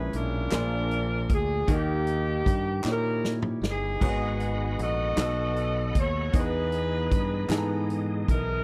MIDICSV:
0, 0, Header, 1, 6, 480
1, 0, Start_track
1, 0, Tempo, 776197
1, 1041, Time_signature, 6, 3, 24, 8
1, 5342, End_track
2, 0, Start_track
2, 0, Title_t, "Tonewheel organ"
2, 0, Program_c, 0, 16
2, 2488, Note_on_c, 0, 75, 62
2, 2489, Note_on_c, 0, 78, 61
2, 2489, Note_on_c, 0, 83, 77
2, 2490, Note_on_c, 0, 66, 67
2, 3194, Note_off_c, 0, 78, 0
2, 3199, Note_off_c, 0, 66, 0
2, 3202, Note_on_c, 0, 78, 69
2, 3211, Note_on_c, 0, 69, 70
2, 3912, Note_off_c, 0, 83, 0
2, 3915, Note_off_c, 0, 78, 0
2, 3920, Note_off_c, 0, 69, 0
2, 3925, Note_on_c, 0, 68, 75
2, 5342, Note_off_c, 0, 68, 0
2, 5342, Note_off_c, 0, 75, 0
2, 5342, End_track
3, 0, Start_track
3, 0, Title_t, "Saxophone section"
3, 0, Program_c, 1, 65
3, 0, Note_on_c, 1, 64, 74
3, 0, Note_on_c, 1, 68, 83
3, 0, Note_on_c, 1, 71, 102
3, 88, Note_on_c, 1, 62, 82
3, 88, Note_on_c, 1, 65, 76
3, 100, Note_off_c, 1, 71, 0
3, 103, Note_on_c, 1, 70, 116
3, 308, Note_off_c, 1, 64, 0
3, 311, Note_off_c, 1, 68, 0
3, 780, Note_off_c, 1, 62, 0
3, 780, Note_off_c, 1, 65, 0
3, 812, Note_off_c, 1, 70, 0
3, 828, Note_on_c, 1, 68, 95
3, 1055, Note_off_c, 1, 68, 0
3, 1060, Note_on_c, 1, 63, 78
3, 1063, Note_on_c, 1, 58, 70
3, 1074, Note_on_c, 1, 67, 107
3, 1746, Note_off_c, 1, 63, 0
3, 1748, Note_off_c, 1, 58, 0
3, 1778, Note_off_c, 1, 67, 0
3, 1803, Note_on_c, 1, 70, 106
3, 2077, Note_off_c, 1, 70, 0
3, 2277, Note_on_c, 1, 63, 82
3, 2278, Note_on_c, 1, 59, 79
3, 2293, Note_on_c, 1, 68, 104
3, 2955, Note_off_c, 1, 63, 0
3, 2956, Note_off_c, 1, 59, 0
3, 2963, Note_off_c, 1, 68, 0
3, 2975, Note_on_c, 1, 69, 92
3, 2977, Note_on_c, 1, 66, 91
3, 2989, Note_on_c, 1, 75, 118
3, 3664, Note_off_c, 1, 69, 0
3, 3665, Note_off_c, 1, 66, 0
3, 3696, Note_off_c, 1, 75, 0
3, 3710, Note_on_c, 1, 73, 111
3, 3935, Note_on_c, 1, 63, 90
3, 3936, Note_off_c, 1, 73, 0
3, 3937, Note_on_c, 1, 68, 81
3, 3952, Note_on_c, 1, 71, 110
3, 4940, Note_off_c, 1, 63, 0
3, 4941, Note_off_c, 1, 68, 0
3, 4973, Note_off_c, 1, 71, 0
3, 5133, Note_on_c, 1, 64, 73
3, 5141, Note_on_c, 1, 70, 105
3, 5342, Note_off_c, 1, 64, 0
3, 5342, Note_off_c, 1, 70, 0
3, 5342, End_track
4, 0, Start_track
4, 0, Title_t, "Grand piano"
4, 0, Program_c, 2, 0
4, 0, Control_c, 2, 64, 127
4, 0, Note_on_c, 2, 46, 65
4, 0, Note_on_c, 2, 56, 78
4, 0, Note_on_c, 2, 61, 69
4, 0, Note_on_c, 2, 64, 66
4, 0, Note_on_c, 2, 68, 67
4, 0, Note_on_c, 2, 73, 86
4, 236, Note_off_c, 2, 56, 0
4, 239, Note_off_c, 2, 61, 0
4, 240, Note_off_c, 2, 64, 0
4, 242, Note_off_c, 2, 68, 0
4, 244, Note_off_c, 2, 73, 0
4, 298, Note_off_c, 2, 46, 0
4, 315, Note_on_c, 2, 58, 67
4, 323, Note_on_c, 2, 62, 69
4, 326, Note_on_c, 2, 65, 65
4, 327, Note_on_c, 2, 46, 65
4, 330, Note_on_c, 2, 68, 65
4, 331, Control_c, 2, 64, 0
4, 334, Note_on_c, 2, 72, 63
4, 367, Note_off_c, 2, 72, 0
4, 374, Note_on_c, 2, 74, 78
4, 426, Control_c, 2, 64, 127
4, 957, Note_off_c, 2, 58, 0
4, 961, Note_off_c, 2, 62, 0
4, 963, Note_off_c, 2, 65, 0
4, 965, Note_off_c, 2, 68, 0
4, 986, Note_off_c, 2, 74, 0
4, 1019, Note_off_c, 2, 46, 0
4, 1036, Note_on_c, 2, 63, 71
4, 1045, Note_on_c, 2, 51, 62
4, 1045, Note_on_c, 2, 66, 59
4, 1048, Control_c, 2, 64, 0
4, 1055, Note_on_c, 2, 70, 89
4, 1083, Note_off_c, 2, 66, 0
4, 1086, Note_on_c, 2, 67, 77
4, 1172, Control_c, 2, 64, 127
4, 1678, Note_off_c, 2, 63, 0
4, 1687, Note_off_c, 2, 70, 0
4, 1703, Note_off_c, 2, 67, 0
4, 1738, Note_off_c, 2, 51, 0
4, 1756, Note_on_c, 2, 63, 68
4, 1764, Note_on_c, 2, 64, 50
4, 1772, Note_on_c, 2, 73, 70
4, 1803, Note_off_c, 2, 64, 0
4, 1804, Note_on_c, 2, 67, 58
4, 2398, Note_off_c, 2, 63, 0
4, 2406, Note_off_c, 2, 73, 0
4, 2422, Note_off_c, 2, 67, 0
4, 2474, Note_on_c, 2, 59, 72
4, 2478, Note_on_c, 2, 63, 68
4, 2481, Note_on_c, 2, 44, 59
4, 2483, Note_on_c, 2, 66, 69
4, 2486, Note_on_c, 2, 68, 69
4, 2489, Control_c, 2, 64, 0
4, 2490, Note_on_c, 2, 73, 66
4, 2526, Note_off_c, 2, 73, 0
4, 2531, Note_on_c, 2, 75, 80
4, 2604, Control_c, 2, 64, 127
4, 3117, Note_off_c, 2, 59, 0
4, 3119, Note_off_c, 2, 63, 0
4, 3121, Note_off_c, 2, 66, 0
4, 3123, Note_off_c, 2, 68, 0
4, 3146, Note_off_c, 2, 75, 0
4, 3177, Note_off_c, 2, 44, 0
4, 3187, Note_on_c, 2, 59, 65
4, 3193, Note_on_c, 2, 63, 60
4, 3198, Note_on_c, 2, 66, 60
4, 3200, Note_on_c, 2, 47, 62
4, 3203, Note_on_c, 2, 69, 64
4, 3207, Note_on_c, 2, 75, 73
4, 3209, Control_c, 2, 64, 0
4, 3328, Control_c, 2, 64, 127
4, 3834, Note_off_c, 2, 59, 0
4, 3837, Note_off_c, 2, 63, 0
4, 3839, Note_off_c, 2, 66, 0
4, 3842, Note_off_c, 2, 69, 0
4, 3844, Note_off_c, 2, 75, 0
4, 3897, Note_off_c, 2, 47, 0
4, 3909, Note_on_c, 2, 59, 76
4, 3916, Note_on_c, 2, 63, 69
4, 3918, Note_on_c, 2, 52, 66
4, 3925, Note_on_c, 2, 68, 73
4, 3927, Note_on_c, 2, 75, 84
4, 3931, Control_c, 2, 64, 0
4, 4053, Control_c, 2, 64, 127
4, 4555, Note_off_c, 2, 59, 0
4, 4559, Note_off_c, 2, 63, 0
4, 4563, Note_off_c, 2, 68, 0
4, 4565, Note_off_c, 2, 75, 0
4, 4617, Note_off_c, 2, 52, 0
4, 4628, Note_on_c, 2, 59, 83
4, 4634, Note_on_c, 2, 63, 76
4, 4638, Note_on_c, 2, 52, 81
4, 4643, Note_on_c, 2, 68, 74
4, 4647, Note_on_c, 2, 69, 80
4, 4685, Note_off_c, 2, 69, 0
4, 4689, Note_on_c, 2, 82, 100
4, 5276, Note_off_c, 2, 59, 0
4, 5279, Note_off_c, 2, 63, 0
4, 5281, Note_off_c, 2, 52, 0
4, 5283, Note_off_c, 2, 68, 0
4, 5306, Note_off_c, 2, 82, 0
4, 5342, End_track
5, 0, Start_track
5, 0, Title_t, "Fingered electric bass"
5, 0, Program_c, 3, 33
5, 84, Note_on_c, 3, 35, 80
5, 304, Note_off_c, 3, 35, 0
5, 322, Note_on_c, 3, 34, 106
5, 777, Note_off_c, 3, 34, 0
5, 803, Note_on_c, 3, 38, 92
5, 1023, Note_off_c, 3, 38, 0
5, 1035, Note_on_c, 3, 39, 116
5, 1494, Note_off_c, 3, 39, 0
5, 1521, Note_on_c, 3, 43, 80
5, 1742, Note_off_c, 3, 43, 0
5, 1761, Note_on_c, 3, 46, 94
5, 2217, Note_off_c, 3, 46, 0
5, 2236, Note_on_c, 3, 31, 82
5, 2460, Note_off_c, 3, 31, 0
5, 2480, Note_on_c, 3, 32, 113
5, 2936, Note_off_c, 3, 32, 0
5, 2962, Note_on_c, 3, 34, 78
5, 3183, Note_off_c, 3, 34, 0
5, 3196, Note_on_c, 3, 35, 102
5, 3655, Note_off_c, 3, 35, 0
5, 3679, Note_on_c, 3, 39, 83
5, 3902, Note_off_c, 3, 39, 0
5, 3918, Note_on_c, 3, 40, 101
5, 4376, Note_off_c, 3, 40, 0
5, 4397, Note_on_c, 3, 43, 82
5, 4621, Note_off_c, 3, 43, 0
5, 4633, Note_on_c, 3, 44, 107
5, 5094, Note_off_c, 3, 44, 0
5, 5122, Note_on_c, 3, 35, 94
5, 5342, Note_off_c, 3, 35, 0
5, 5342, End_track
6, 0, Start_track
6, 0, Title_t, "Drums"
6, 81, Note_on_c, 9, 42, 52
6, 143, Note_off_c, 9, 42, 0
6, 315, Note_on_c, 9, 42, 84
6, 319, Note_on_c, 9, 39, 103
6, 321, Note_on_c, 9, 38, 118
6, 377, Note_off_c, 9, 42, 0
6, 381, Note_off_c, 9, 39, 0
6, 383, Note_off_c, 9, 38, 0
6, 563, Note_on_c, 9, 42, 46
6, 625, Note_off_c, 9, 42, 0
6, 801, Note_on_c, 9, 42, 57
6, 802, Note_on_c, 9, 36, 86
6, 862, Note_off_c, 9, 42, 0
6, 863, Note_off_c, 9, 36, 0
6, 1038, Note_on_c, 9, 42, 79
6, 1039, Note_on_c, 9, 36, 92
6, 1100, Note_off_c, 9, 42, 0
6, 1101, Note_off_c, 9, 36, 0
6, 1278, Note_on_c, 9, 42, 54
6, 1340, Note_off_c, 9, 42, 0
6, 1522, Note_on_c, 9, 36, 86
6, 1528, Note_on_c, 9, 42, 57
6, 1584, Note_off_c, 9, 36, 0
6, 1590, Note_off_c, 9, 42, 0
6, 1757, Note_on_c, 9, 39, 117
6, 1770, Note_on_c, 9, 38, 57
6, 1818, Note_off_c, 9, 39, 0
6, 1831, Note_off_c, 9, 38, 0
6, 2008, Note_on_c, 9, 38, 78
6, 2069, Note_off_c, 9, 38, 0
6, 2117, Note_on_c, 9, 45, 82
6, 2179, Note_off_c, 9, 45, 0
6, 2248, Note_on_c, 9, 38, 99
6, 2309, Note_off_c, 9, 38, 0
6, 2482, Note_on_c, 9, 36, 88
6, 2483, Note_on_c, 9, 55, 79
6, 2544, Note_off_c, 9, 36, 0
6, 2545, Note_off_c, 9, 55, 0
6, 2721, Note_on_c, 9, 42, 57
6, 2783, Note_off_c, 9, 42, 0
6, 2962, Note_on_c, 9, 42, 58
6, 3024, Note_off_c, 9, 42, 0
6, 3195, Note_on_c, 9, 42, 87
6, 3201, Note_on_c, 9, 38, 116
6, 3203, Note_on_c, 9, 39, 113
6, 3257, Note_off_c, 9, 42, 0
6, 3263, Note_off_c, 9, 38, 0
6, 3265, Note_off_c, 9, 39, 0
6, 3441, Note_on_c, 9, 42, 51
6, 3503, Note_off_c, 9, 42, 0
6, 3680, Note_on_c, 9, 36, 82
6, 3680, Note_on_c, 9, 42, 59
6, 3741, Note_off_c, 9, 42, 0
6, 3742, Note_off_c, 9, 36, 0
6, 3916, Note_on_c, 9, 42, 79
6, 3919, Note_on_c, 9, 36, 104
6, 3978, Note_off_c, 9, 42, 0
6, 3980, Note_off_c, 9, 36, 0
6, 4156, Note_on_c, 9, 42, 59
6, 4218, Note_off_c, 9, 42, 0
6, 4400, Note_on_c, 9, 36, 94
6, 4401, Note_on_c, 9, 42, 56
6, 4462, Note_off_c, 9, 36, 0
6, 4463, Note_off_c, 9, 42, 0
6, 4636, Note_on_c, 9, 39, 116
6, 4640, Note_on_c, 9, 42, 92
6, 4646, Note_on_c, 9, 38, 117
6, 4698, Note_off_c, 9, 39, 0
6, 4702, Note_off_c, 9, 42, 0
6, 4708, Note_off_c, 9, 38, 0
6, 4885, Note_on_c, 9, 42, 51
6, 4947, Note_off_c, 9, 42, 0
6, 5123, Note_on_c, 9, 36, 84
6, 5127, Note_on_c, 9, 42, 60
6, 5185, Note_off_c, 9, 36, 0
6, 5189, Note_off_c, 9, 42, 0
6, 5342, End_track
0, 0, End_of_file